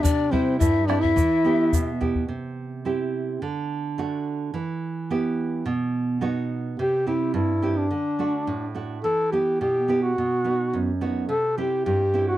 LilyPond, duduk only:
\new Staff \with { instrumentName = "Duduk" } { \time 2/4 \key c \lydian \tempo 4 = 107 d'8 c'8 e'8 d'16 e'16~ | e'4. r8 | r2 | r2 |
r2 | r2 | g'8 e'8 e'8. d'16~ | d'4. r8 |
a'8 g'8 g'8. fis'16~ | fis'4. r8 | a'8 g'8 g'8. fis'16 | }